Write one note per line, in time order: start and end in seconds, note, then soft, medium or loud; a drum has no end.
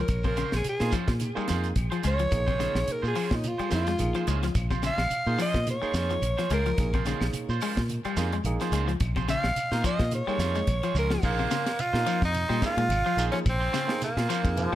0.00 0.26 A#4 medium
0.08 0.43 A#1 loud
0.08 kick medium
0.08 closed hi-hat medium
0.08 claves medium
0.08 shekere medium
0.23 0.32 C3 medium
0.23 0.36 F4 soft
0.23 0.36 G#4 medium
0.23 0.53 A#4 medium
0.23 0.37 C5 soft
0.23 kick medium
0.23 closed hi-hat soft
0.23 shekere soft
0.36 0.54 C#3 medium
0.36 0.55 C#4 medium
0.36 0.55 F4 medium
0.36 0.55 G#4 medium
0.36 0.56 C5 medium
0.36 closed hi-hat soft
0.36 shekere medium
0.52 0.63 A#1 medium
0.52 0.66 G#4 medium
0.52 snare medium
0.52 claves medium
0.52 shekere soft
0.64 muted fingered electric bass stroke soft
0.64 closed hi-hat medium
0.64 shekere medium
0.69 0.94 G#4 loud
0.80 0.90 A#2 medium
0.80 0.95 A#3 medium
0.80 0.95 D#4 medium
0.80 0.91 F4 soft
0.80 0.92 G#4 soft
0.80 0.95 G#4 medium
0.80 0.92 C5 medium
0.80 snare medium
0.80 shekere soft
0.92 1.10 F3 medium
0.92 1.10 C#4 medium
0.92 1.11 F4 medium
0.92 1.11 G#4 medium
0.92 1.11 C5 medium
0.92 kick medium
0.92 closed hi-hat medium
0.92 claves medium
0.92 shekere medium
1.08 1.30 A#2 loud
1.08 kick medium
1.08 snare medium
1.08 closed hi-hat soft
1.08 shekere soft
1.20 1.26 D#4 medium
1.20 1.27 F4 medium
1.20 closed hi-hat medium
1.20 shekere medium
1.35 1.53 G3 medium
1.35 1.72 A#3 loud
1.35 1.72 D#4 medium
1.35 1.47 F4 soft
1.35 1.72 G#4 loud
1.35 1.47 G#4 medium
1.35 1.48 C5 medium
1.35 muted fingered electric bass stroke soft
1.35 claves medium
1.35 shekere soft
1.48 1.72 F2 medium
1.48 1.66 F4 medium
1.48 1.67 G#4 medium
1.48 1.67 C5 medium
1.48 snare medium
1.48 closed hi-hat medium
1.48 shekere medium
1.64 closed hi-hat soft
1.64 shekere soft
1.76 1.88 A#1 medium
1.76 kick medium
1.76 closed hi-hat medium
1.76 claves medium
1.76 shekere medium
1.91 1.99 F3 medium
1.91 2.02 F4 soft
1.91 2.03 G#4 soft
1.91 2.03 C5 medium
1.91 closed hi-hat soft
1.91 shekere soft
2.03 2.27 C#2 loud
2.03 2.14 G#3 medium
2.03 2.22 C#4 medium
2.03 2.22 F4 medium
2.03 2.23 C5 medium
2.03 2.93 C#5 loud
2.03 muted clean electric guitar stroke medium
2.03 closed hi-hat medium
2.03 shekere medium
2.19 2.27 F3 medium
2.19 closed hi-hat soft
2.19 shekere soft
2.31 2.66 A#1 loud
2.31 2.44 A#3 medium
2.31 2.44 D#4 medium
2.31 2.44 G#4 medium
2.31 kick medium
2.31 snare soft
2.31 closed hi-hat medium
2.31 claves medium
2.31 shekere medium
2.47 2.55 C3 medium
2.47 2.58 F4 soft
2.47 2.59 G#4 soft
2.47 2.59 C5 medium
2.47 kick medium
2.47 closed hi-hat soft
2.47 shekere soft
2.58 2.77 C#3 medium
2.58 3.03 A#3 medium
2.58 2.78 C#4 medium
2.58 3.04 D#4 medium
2.58 2.78 F4 medium
2.58 2.78 G#4 medium
2.58 3.04 G#4 medium
2.58 2.78 C5 medium
2.58 snare soft
2.58 closed hi-hat medium
2.58 shekere medium
2.75 2.85 A#1 medium
2.75 snare medium
2.75 claves medium
2.75 shekere soft
2.88 closed hi-hat medium
2.88 shekere medium
2.92 3.05 A#4 medium
3.02 3.13 A#2 medium
3.02 3.14 F4 soft
3.02 3.14 G#4 soft
3.02 3.15 C5 medium
3.02 shekere soft
3.07 3.36 G#4 medium
3.15 3.33 F3 medium
3.15 3.33 C#4 medium
3.15 3.34 F4 medium
3.15 3.34 G#4 medium
3.15 3.34 C5 medium
3.15 open hi-hat medium
3.15 claves medium
3.15 shekere medium
3.31 3.53 A#2 medium
3.31 3.49 D#4 medium
3.31 kick medium
3.31 snare medium
3.31 shekere soft
3.44 3.73 F4 medium
3.44 closed hi-hat medium
3.44 shekere medium
3.58 3.76 G3 medium
3.58 3.70 F4 soft
3.58 3.71 G#4 soft
3.58 3.71 C5 medium
3.58 muted fingered electric bass stroke soft
3.58 closed hi-hat soft
3.58 claves medium
3.58 shekere soft
3.70 3.94 F2 loud
3.70 3.82 A#3 medium
3.70 3.89 C#4 medium
3.70 3.83 D#4 medium
3.70 3.89 F4 medium
3.70 3.83 G#4 medium
3.70 3.90 G#4 medium
3.70 3.90 C5 medium
3.70 snare medium
3.70 closed hi-hat soft
3.70 shekere medium
3.74 4.27 F4 loud
3.86 4.04 G#3 medium
3.86 snare soft
3.86 closed hi-hat soft
3.86 shekere soft
3.99 4.12 A#1 medium
3.99 4.43 A#3 medium
3.99 4.43 D#4 medium
3.99 4.43 G#4 medium
3.99 closed hi-hat medium
3.99 claves medium
3.99 shekere medium
4.14 4.23 F3 medium
4.14 4.26 F4 soft
4.14 4.27 G#4 medium
4.14 4.27 C5 soft
4.14 closed hi-hat soft
4.14 shekere soft
4.27 4.50 C#2 loud
4.27 4.37 G#3 medium
4.27 4.45 C#4 medium
4.27 4.46 F4 medium
4.27 4.46 G#4 medium
4.27 4.46 C5 medium
4.27 closed hi-hat medium
4.27 shekere medium
4.43 4.51 F3 medium
4.43 snare soft
4.43 closed hi-hat soft
4.43 shekere soft
4.55 4.89 A#1 medium
4.55 kick medium
4.55 closed hi-hat medium
4.55 claves medium
4.55 shekere medium
4.70 4.79 C3 medium
4.70 4.83 F4 soft
4.70 4.83 C5 medium
4.70 muted clean electric guitar stroke medium
4.70 kick medium
4.70 closed hi-hat soft
4.70 shekere soft
4.83 5.00 C#3 medium
4.83 5.01 C#4 medium
4.83 5.02 F4 medium
4.83 5.02 G#4 medium
4.83 5.02 C5 medium
4.83 5.39 F5 loud
4.83 snare soft
4.83 closed hi-hat soft
4.83 shekere medium
4.98 5.08 A#1 medium
4.98 snare medium
4.98 claves medium
4.98 shekere soft
5.10 closed hi-hat medium
5.10 shekere medium
5.26 5.36 A#2 medium
5.26 5.41 A#3 medium
5.26 5.41 D#4 medium
5.26 5.39 F4 soft
5.26 5.42 G#4 loud
5.26 5.39 G#4 soft
5.26 5.39 C5 medium
5.26 shekere soft
5.38 5.55 F3 medium
5.38 5.57 C#4 medium
5.38 5.57 F4 medium
5.38 5.58 G#4 medium
5.38 5.58 C5 medium
5.38 5.68 D#5 loud
5.38 open hi-hat medium
5.38 claves medium
5.38 shekere medium
5.54 5.76 A#2 loud
5.54 kick medium
5.54 snare medium
5.54 closed hi-hat soft
5.54 shekere soft
5.66 5.72 D#4 medium
5.66 5.73 G#4 medium
5.66 snare soft
5.66 closed hi-hat medium
5.66 shekere medium
5.70 6.50 C#5 medium
5.82 6.18 A#3 medium
5.82 6.18 D#4 medium
5.82 5.94 F4 soft
5.82 6.19 G#4 medium
5.82 5.95 G#4 soft
5.82 5.95 C5 soft
5.82 muted clean electric guitar stroke medium
5.82 muted fingered electric bass stroke soft
5.82 claves medium
5.82 shekere soft
5.94 6.16 F2 loud
5.94 6.13 C#4 medium
5.94 6.13 F4 medium
5.94 6.14 G#4 medium
5.94 6.14 C5 medium
5.94 snare medium
5.94 closed hi-hat medium
5.94 shekere medium
6.10 6.27 F3 medium
6.10 closed hi-hat soft
6.10 shekere soft
6.22 6.34 A#1 medium
6.22 closed hi-hat medium
6.22 claves medium
6.22 shekere medium
6.37 6.46 F3 medium
6.37 6.50 F4 soft
6.37 6.50 G#4 soft
6.37 6.50 C5 medium
6.37 snare soft
6.37 closed hi-hat soft
6.37 shekere soft
6.50 6.72 C#2 loud
6.50 6.60 G#3 medium
6.50 6.68 C#4 medium
6.50 6.69 F4 medium
6.50 6.69 G#4 medium
6.50 7.06 A#4 loud
6.50 6.69 C5 medium
6.50 closed hi-hat medium
6.50 shekere medium
6.66 6.74 F3 medium
6.66 closed hi-hat soft
6.66 shekere soft
6.77 7.12 A#1 loud
6.77 6.90 A#3 medium
6.77 6.90 D#4 medium
6.77 6.91 G#4 medium
6.77 kick medium
6.77 snare soft
6.77 closed hi-hat medium
6.77 claves medium
6.77 shekere medium
6.93 7.02 C3 medium
6.93 7.06 F4 soft
6.93 7.06 G#4 medium
6.93 7.06 C5 medium
6.93 kick medium
6.93 closed hi-hat soft
6.93 shekere soft
7.05 7.23 C#3 medium
7.05 7.49 A#3 medium
7.05 7.24 C#4 medium
7.05 7.50 D#4 medium
7.05 7.24 F4 medium
7.05 7.50 G#4 medium
7.05 7.25 G#4 medium
7.05 7.25 C5 medium
7.05 snare soft
7.05 closed hi-hat soft
7.05 shekere medium
7.21 7.31 A#1 medium
7.21 snare medium
7.21 claves medium
7.21 shekere soft
7.33 muted fingered electric bass stroke soft
7.33 closed hi-hat medium
7.33 shekere loud
7.49 7.59 A#2 medium
7.49 7.61 F4 soft
7.49 7.62 C5 medium
7.49 shekere soft
7.61 7.79 G#3 medium
7.61 7.80 C#4 medium
7.61 7.80 F4 medium
7.61 7.80 G#4 medium
7.61 7.81 C5 medium
7.61 open hi-hat medium
7.61 claves medium
7.61 shekere medium
7.77 7.99 A#2 loud
7.77 kick medium
7.77 snare medium
7.77 shekere soft
7.89 closed hi-hat medium
7.89 shekere medium
8.05 8.22 G3 medium
8.05 8.16 F4 soft
8.05 8.17 G#4 medium
8.05 8.16 C5 medium
8.05 muted fingered electric bass stroke soft
8.05 closed hi-hat soft
8.05 claves medium
8.05 shekere soft
8.17 8.39 F2 loud
8.17 8.29 A#3 medium
8.17 8.35 C#4 medium
8.17 8.30 D#4 medium
8.17 8.35 F4 medium
8.17 8.36 G#4 medium
8.17 8.30 G#4 loud
8.17 8.36 C5 medium
8.17 snare medium
8.17 closed hi-hat medium
8.17 shekere medium
8.32 8.50 G#3 medium
8.32 closed hi-hat soft
8.32 shekere soft
8.44 8.57 A#1 medium
8.44 8.89 A#3 medium
8.44 8.89 D#4 medium
8.44 8.90 G#4 loud
8.44 closed hi-hat medium
8.44 claves medium
8.44 shekere medium
8.60 8.69 F3 medium
8.60 8.72 F4 medium
8.60 8.72 G#4 medium
8.60 8.73 C5 medium
8.60 snare soft
8.60 closed hi-hat soft
8.60 shekere soft
8.72 8.94 C#2 loud
8.72 8.82 G#3 medium
8.72 8.91 C#4 medium
8.72 8.91 F4 medium
8.72 8.91 G#4 medium
8.72 8.92 C5 medium
8.72 closed hi-hat medium
8.72 shekere medium
8.88 8.96 F3 medium
8.88 closed hi-hat soft
8.88 shekere soft
9.00 9.35 A#1 loud
9.00 kick loud
9.00 closed hi-hat medium
9.00 claves medium
9.00 shekere medium
9.16 9.24 C3 medium
9.16 9.27 F4 soft
9.16 9.28 G#4 medium
9.16 9.28 C5 medium
9.16 kick medium
9.16 closed hi-hat soft
9.16 shekere soft
9.27 9.45 C#3 medium
9.27 9.46 C#4 medium
9.27 9.47 F4 medium
9.27 9.47 G#4 medium
9.27 9.47 C5 medium
9.27 9.84 F5 loud
9.27 snare soft
9.27 closed hi-hat soft
9.27 shekere medium
9.43 9.54 A#1 medium
9.43 snare medium
9.43 claves medium
9.43 shekere soft
9.56 muted fingered electric bass stroke soft
9.56 closed hi-hat medium
9.56 shekere medium
9.71 9.82 A#2 medium
9.71 9.86 A#3 medium
9.71 9.87 D#4 medium
9.71 9.83 F4 soft
9.71 9.84 G#4 medium
9.71 9.87 A#4 medium
9.71 9.84 C5 medium
9.71 snare medium
9.71 shekere soft
9.84 10.01 F3 medium
9.84 10.02 C#4 medium
9.84 10.02 F4 medium
9.84 10.03 G#4 medium
9.84 10.03 C5 medium
9.84 10.12 D#5 loud
9.84 kick medium
9.84 closed hi-hat medium
9.84 claves medium
9.84 shekere medium
9.99 10.22 A#2 loud
9.99 kick medium
9.99 snare medium
9.99 closed hi-hat soft
9.99 shekere soft
10.11 10.18 D#4 medium
10.11 10.18 G#4 medium
10.11 10.95 C#5 loud
10.11 closed hi-hat medium
10.11 shekere medium
10.27 10.44 G3 medium
10.27 10.64 A#3 medium
10.27 10.64 D#4 medium
10.27 10.38 F4 soft
10.27 10.39 G#4 soft
10.27 10.64 G#4 medium
10.27 10.40 C5 medium
10.27 muted fingered electric bass stroke soft
10.27 claves medium
10.27 shekere soft
10.39 10.61 F2 loud
10.39 10.58 C#4 medium
10.39 10.58 F4 medium
10.39 10.58 G#4 medium
10.39 10.58 C5 medium
10.39 snare medium
10.39 closed hi-hat medium
10.39 shekere medium
10.55 10.72 G#3 medium
10.55 closed hi-hat soft
10.55 shekere soft
10.67 10.80 A#1 loud
10.67 kick medium
10.67 closed hi-hat medium
10.67 claves medium
10.67 shekere medium
10.83 10.91 F3 medium
10.83 10.95 F4 soft
10.83 10.96 G#4 medium
10.83 10.96 C5 medium
10.83 closed hi-hat soft
10.83 shekere soft
10.95 11.17 C#2 loud
10.95 11.14 C#4 medium
10.95 11.14 F4 medium
10.95 11.14 G#4 medium
10.95 high tom medium
10.95 shekere medium
10.99 11.24 A#4 loud
11.10 11.19 F3 medium
11.10 snare medium
11.10 shekere soft
11.22 11.45 A#1 medium
11.22 11.50 A#3 medium
11.22 11.82 A#3 loud
11.22 11.39 C#4 medium
11.22 11.50 D#4 medium
11.22 11.39 F4 medium
11.22 11.50 G#4 medium
11.22 11.38 G#4 medium
11.22 11.37 C5 medium
11.22 kick loud
11.22 crash medium
11.22 claves medium
11.22 shekere medium
11.38 11.47 C3 medium
11.38 11.50 F4 soft
11.38 11.50 G#4 medium
11.38 11.50 C5 medium
11.38 shekere soft
11.51 11.68 C#3 medium
11.51 11.69 C#4 medium
11.51 11.69 F4 medium
11.51 11.69 G#4 medium
11.51 11.69 C5 medium
11.51 snare medium
11.51 ride bell medium
11.51 shekere medium
11.66 snare medium
11.66 ride bell medium
11.66 claves medium
11.66 shekere soft
11.79 12.23 F4 loud
11.79 ride bell medium
11.79 shekere loud
11.93 12.04 A#2 medium
11.93 12.20 A#3 medium
11.93 12.20 D#4 medium
11.93 12.07 F4 soft
11.93 12.06 G#4 medium
11.93 12.21 A#4 loud
11.93 12.06 C5 medium
11.93 snare medium
11.93 shekere soft
12.06 12.23 F3 medium
12.06 12.25 C#4 medium
12.06 12.25 G#4 medium
12.06 12.25 C5 medium
12.06 ride bell medium
12.06 claves medium
12.06 shekere medium
12.22 12.44 F2 medium
12.22 12.61 D#4 loud
12.22 kick medium
12.22 snare soft
12.22 shekere soft
12.34 ride bell medium
12.34 shekere loud
12.49 12.60 A#2 loud
12.49 12.66 G3 medium
12.49 12.62 F4 soft
12.49 12.62 G#4 medium
12.49 12.62 C5 medium
12.49 claves medium
12.49 shekere soft
12.61 12.84 A#3 medium
12.61 12.80 C#4 medium
12.61 12.84 D#4 medium
12.61 12.81 F4 medium
12.61 12.84 G#4 medium
12.61 12.81 G#4 medium
12.61 muted clean electric guitar stroke medium
12.61 kick medium
12.61 snare medium
12.61 ride bell medium
12.61 shekere medium
12.66 13.25 F4 loud
12.77 12.87 A#2 loud
12.77 12.95 G#3 medium
12.77 ride bell medium
12.77 shekere soft
12.89 13.02 G#1 loud
12.89 ride bell medium
12.89 claves medium
12.89 shekere loud
13.05 13.13 F3 medium
13.05 13.17 F4 soft
13.05 13.17 G#4 medium
13.05 13.18 C5 medium
13.05 shekere soft
13.17 13.30 A#1 medium
13.17 13.44 A#3 medium
13.17 13.36 C#4 medium
13.17 13.44 D#4 medium
13.17 13.36 F4 medium
13.17 13.44 G#4 medium
13.17 13.36 G#4 medium
13.17 13.36 C5 medium
13.17 ride bell medium
13.17 shekere medium
13.32 13.41 F3 medium
13.32 13.39 C#4 medium
13.32 shekere soft
13.46 13.68 A#1 loud
13.46 13.99 C4 medium
13.46 kick medium
13.46 ride bell medium
13.46 claves medium
13.46 shekere medium
13.60 13.72 F4 soft
13.60 13.72 G#4 medium
13.60 13.72 C5 medium
13.60 shekere soft
13.72 13.90 C#3 medium
13.72 13.91 C#4 medium
13.72 13.91 F4 medium
13.72 13.91 G#4 medium
13.72 13.91 C5 medium
13.72 snare medium
13.72 ride bell soft
13.72 shekere medium
13.87 14.08 A#3 medium
13.87 14.09 D#4 medium
13.87 14.09 G#4 medium
13.87 snare medium
13.87 claves medium
13.87 shekere soft
14.02 14.75 A#3 medium
14.02 snare soft
14.02 ride bell medium
14.02 shekere loud
14.17 14.26 A#2 medium
14.17 14.28 F4 soft
14.17 14.28 G#4 medium
14.17 snare medium
14.17 shekere soft
14.29 14.46 F3 medium
14.29 14.47 C#4 medium
14.29 14.47 F4 medium
14.29 14.47 G#4 medium
14.29 14.47 C5 medium
14.29 snare soft
14.29 ride bell medium
14.29 claves medium
14.29 shekere medium
14.43 14.66 F2 loud
14.43 14.70 A#3 medium
14.43 14.70 D#4 medium
14.43 14.71 G#4 medium
14.43 kick medium
14.43 ride bell medium
14.43 shekere soft
14.56 14.75 F3 medium
14.56 ride bell medium
14.56 shekere medium